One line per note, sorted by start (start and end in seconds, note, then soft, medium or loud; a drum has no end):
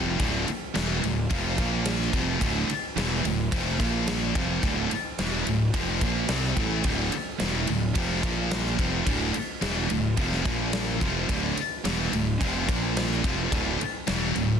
0.00 0.18 F1 medium
0.00 0.19 F2 medium
0.00 0.19 C3 medium
0.00 0.20 F3 medium
0.19 0.46 D1 medium
0.19 0.47 D2 medium
0.19 0.47 A2 medium
0.19 0.47 D3 medium
0.19 kick loud
0.19 ride medium
0.47 muted overdriven electric guitar stroke medium
0.47 muted distorted electric guitar stroke medium
0.47 muted fingered electric bass stroke soft
0.47 ride medium
0.75 1.02 E1 loud
0.75 1.02 E2 medium
0.75 1.02 B2 medium
0.75 1.03 E3 loud
0.75 snare loud
0.75 ride medium
1.03 1.29 D1 medium
1.03 1.25 D2 medium
1.03 1.25 A2 medium
1.03 ride medium
1.30 1.57 F1 medium
1.30 1.57 F2 medium
1.30 1.58 C3 medium
1.30 1.58 F3 medium
1.30 kick loud
1.30 ride medium
1.58 2.10 A#1 medium
1.58 2.13 A#2 medium
1.58 2.14 F3 medium
1.58 2.14 A#3 medium
1.58 kick loud
1.58 ride medium
1.85 snare loud
1.85 ride loud
2.00 snare soft
2.13 2.40 F1 medium
2.13 2.41 F2 medium
2.13 2.41 C3 medium
2.13 2.42 F3 medium
2.13 kick medium
2.13 ride medium
2.41 2.67 D1 medium
2.41 2.68 D2 medium
2.41 2.69 A2 loud
2.41 2.69 D3 loud
2.41 kick medium
2.41 ride medium
2.68 muted fingered electric bass stroke soft
2.68 muted overdriven electric guitar stroke medium
2.68 muted distorted electric guitar stroke medium
2.68 ride medium
2.96 3.22 E1 loud
2.96 3.24 E2 medium
2.96 3.24 B2 loud
2.96 3.24 E3 loud
2.96 snare loud
2.96 ride loud
3.25 3.51 D1 medium
3.25 3.47 D2 medium
3.25 3.47 A2 medium
3.25 ride medium
3.52 3.78 F1 medium
3.52 3.79 F2 loud
3.52 3.80 C3 medium
3.52 3.79 F3 loud
3.52 kick loud
3.52 ride medium
3.80 4.31 A#1 medium
3.80 4.34 A#2 medium
3.80 4.35 F3 medium
3.80 4.35 A#3 medium
3.80 kick loud
3.80 ride medium
4.07 snare loud
4.07 ride medium
4.35 4.61 F1 loud
4.35 4.62 F2 medium
4.35 4.62 C3 medium
4.35 4.63 F3 medium
4.35 kick loud
4.35 ride medium
4.63 4.89 D1 loud
4.63 4.90 D2 medium
4.63 4.90 A2 medium
4.63 4.91 D3 loud
4.63 kick loud
4.63 ride medium
4.91 muted fingered electric bass stroke soft
4.91 muted distorted electric guitar stroke medium
4.91 muted overdriven electric guitar stroke medium
4.91 ride medium
5.19 5.45 E1 medium
5.19 5.46 E2 medium
5.19 5.46 B2 loud
5.19 5.46 E3 loud
5.19 snare loud
5.19 ride medium
5.47 5.72 D1 medium
5.47 5.69 D2 medium
5.47 5.69 A2 medium
5.47 ride medium
5.74 6.00 F1 medium
5.74 6.01 F2 medium
5.74 6.01 C3 loud
5.74 6.01 F3 loud
5.74 kick loud
5.74 ride loud
6.01 6.27 A#1 medium
6.01 6.29 A#2 medium
6.01 6.29 F3 medium
6.01 6.30 A#3 loud
6.01 kick loud
6.01 ride medium
6.29 6.55 C2 medium
6.29 6.57 C3 loud
6.29 6.57 G3 loud
6.29 6.57 C4 loud
6.29 snare loud
6.29 ride medium
6.43 snare soft
6.57 6.83 A1 loud
6.57 6.85 A2 medium
6.57 6.85 E3 medium
6.57 6.85 A3 medium
6.57 kick loud
6.57 ride medium
6.84 7.11 D1 medium
6.84 7.12 D2 loud
6.84 7.12 A2 medium
6.84 7.13 D3 loud
6.84 kick loud
6.84 ride loud
7.12 muted overdriven electric guitar stroke medium
7.12 muted fingered electric bass stroke soft
7.12 muted distorted electric guitar stroke medium
7.12 ride medium
7.40 7.67 E1 medium
7.40 7.67 E2 medium
7.40 7.68 B2 loud
7.40 7.68 E3 loud
7.40 snare loud
7.40 ride medium
7.67 7.95 D1 medium
7.67 7.90 D2 medium
7.67 7.91 A2 medium
7.67 ride medium
7.95 8.22 F1 medium
7.95 8.22 F2 loud
7.95 8.23 C3 loud
7.95 8.22 F3 medium
7.95 kick loud
7.95 ride loud
8.23 8.75 A#1 medium
8.23 8.78 A#2 medium
8.23 8.78 F3 medium
8.23 8.79 A#3 medium
8.23 kick loud
8.23 ride medium
8.51 snare loud
8.51 ride medium
8.66 snare soft
8.78 9.05 F1 medium
8.78 9.05 F2 medium
8.78 9.06 C3 medium
8.78 9.06 F3 medium
8.78 kick loud
8.78 ride medium
9.05 9.33 D1 medium
9.05 9.33 D2 medium
9.05 9.34 A2 loud
9.05 9.34 D3 medium
9.05 kick medium
9.05 ride medium
9.33 muted overdriven electric guitar stroke medium
9.33 muted distorted electric guitar stroke medium
9.33 muted fingered electric bass stroke soft
9.33 ride medium
9.61 9.88 E1 medium
9.61 9.89 E2 medium
9.61 9.89 B2 loud
9.61 9.90 E3 loud
9.61 snare loud
9.61 ride medium
9.90 10.17 D1 medium
9.90 10.13 D2 medium
9.90 10.13 A2 medium
9.90 ride medium
10.17 10.44 F1 medium
10.17 10.45 F2 medium
10.17 10.45 C3 medium
10.17 10.45 F3 loud
10.17 kick loud
10.17 ride medium
10.32 snare soft
10.45 10.98 A#1 loud
10.45 11.00 A#2 medium
10.45 11.01 F3 medium
10.45 11.01 A#3 medium
10.45 kick loud
10.45 ride medium
10.73 snare loud
10.73 ride medium
11.01 11.28 F1 medium
11.01 11.29 F2 medium
11.01 11.29 C3 medium
11.01 11.29 F3 medium
11.01 kick medium
11.01 ride medium
11.29 11.55 D1 medium
11.29 11.56 D2 loud
11.29 11.57 A2 medium
11.29 11.57 D3 loud
11.29 kick medium
11.29 ride medium
11.57 muted fingered electric bass stroke soft
11.57 muted distorted electric guitar stroke medium
11.57 muted overdriven electric guitar stroke medium
11.57 ride medium
11.84 12.11 E1 loud
11.84 12.12 E2 loud
11.84 12.12 B2 loud
11.84 12.13 E3 loud
11.84 snare loud
11.84 ride medium
12.12 12.39 D1 medium
12.12 12.35 D2 medium
12.12 12.35 A2 medium
12.12 ride medium
12.41 12.67 F1 medium
12.41 12.68 F2 medium
12.41 12.68 C3 loud
12.41 12.67 F3 loud
12.41 kick loud
12.41 ride medium
12.68 13.20 A#1 medium
12.68 13.23 A#2 medium
12.68 13.23 F3 medium
12.68 13.24 A#3 loud
12.68 kick loud
12.68 ride medium
12.97 snare loud
12.97 ride medium
13.11 snare soft
13.23 13.50 F1 medium
13.23 13.51 F2 medium
13.23 13.51 C3 medium
13.23 13.51 F3 medium
13.23 kick loud
13.23 ride medium
13.51 13.78 D1 medium
13.51 13.79 D2 loud
13.51 13.79 A2 medium
13.51 13.79 D3 medium
13.51 kick loud
13.51 ride medium
13.80 muted overdriven electric guitar stroke medium
13.80 muted distorted electric guitar stroke medium
13.80 muted fingered electric bass stroke soft
13.80 ride medium
14.07 14.35 E1 loud
14.07 14.35 E2 loud
14.07 14.35 B2 loud
14.07 14.35 E3 loud
14.07 snare loud
14.07 ride medium
14.36 14.60 D1 medium
14.36 14.58 D2 medium
14.36 14.58 A2 medium
14.36 ride medium